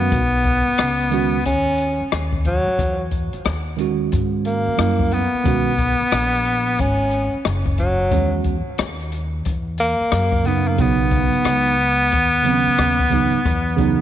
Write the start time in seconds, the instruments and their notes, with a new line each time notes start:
Already playing: tine electric piano D#3 G#3 C#4 F#4, tenor saxophone B3
0.12 upright bass B1, kick, closed hi-hat
0.44 kick, closed hi-hat
0.68 muted upright bass stroke
0.78 upright bass C#2, cross-stick, closed hi-hat
1.00 closed hi-hat
1.10 tine electric piano D#3 G#3 C#4 F#4, closed hi-hat
1.45 upright bass D#2, tenor saxophone C#4, kick, closed hi-hat
1.78 closed hi-hat
2.01 muted upright bass stroke
2.12 upright bass D#2, cross-stick, closed hi-hat
2.33 kick
2.45 tenor saxophone F#3, kick, closed hi-hat
2.68 muted upright bass stroke
2.79 upright bass E2, kick, closed hi-hat
3.11 kick, closed hi-hat
3.33 muted upright bass stroke, closed hi-hat
3.45 upright bass D#2, cross-stick, closed hi-hat
3.77 tine electric piano D#3 G#3 C#4 F#4, closed hi-hat
4.12 upright bass G#2, kick, closed hi-hat
4.45 tenor saxophone A#3, closed hi-hat
4.67 muted upright bass stroke
4.77 upright bass F#2, tine electric piano G3 A#3 C#4 E4, cross-stick, closed hi-hat
4.99 kick
5.11 tenor saxophone B3, closed hi-hat
5.34 muted upright bass stroke
5.43 upright bass B1, tine electric piano D#3 G#3 C#4 F#4, kick, closed hi-hat
5.78 kick, closed hi-hat
6.00 muted upright bass stroke
6.12 upright bass A#1, cross-stick, closed hi-hat
6.33 closed hi-hat
6.45 closed hi-hat
6.78 upright bass G#1, tenor saxophone C#4, kick, closed hi-hat
7.11 closed hi-hat
7.34 muted upright bass stroke
7.45 upright bass F#1, cross-stick, closed hi-hat
7.66 kick
7.78 tenor saxophone F#3, kick, closed hi-hat
8.10 upright bass E2, tine electric piano D#3 G#3 C#4 F#4, kick, closed hi-hat
8.44 kick, closed hi-hat
8.67 muted upright bass stroke
8.78 upright bass D#2, cross-stick, closed hi-hat
9.00 closed hi-hat
9.12 closed hi-hat
9.45 upright bass E2, kick, closed hi-hat
9.78 tenor saxophone A#3, closed hi-hat
10.00 muted upright bass stroke
10.12 upright bass F#2, cross-stick, closed hi-hat
10.32 kick
10.43 tine electric piano C#3 F#3 B3 D#4, tenor saxophone B3, closed hi-hat
10.68 tenor saxophone A#3
10.76 upright bass B1, tine electric piano C#3 F#3 B3, kick, closed hi-hat
10.80 tenor saxophone B3, tine electric piano D#4
11.11 kick, closed hi-hat
11.33 muted upright bass stroke, closed hi-hat
11.45 upright bass C#2, cross-stick, closed hi-hat
11.67 closed hi-hat
11.79 open hi-hat
12.12 upright bass D#2, kick, closed hi-hat
12.43 tine electric piano C#3 F#3 B3 C4, closed hi-hat
12.54 tine electric piano C#4
12.67 muted upright bass stroke
12.79 upright bass D#2, cross-stick, closed hi-hat
12.99 kick
13.10 tine electric piano C#3 F#3 B3 D#4, kick, closed hi-hat
13.34 muted upright bass stroke
13.45 upright bass E2, kick, closed hi-hat
13.77 tine electric piano C#3 F#3 B3 D#4, kick, closed hi-hat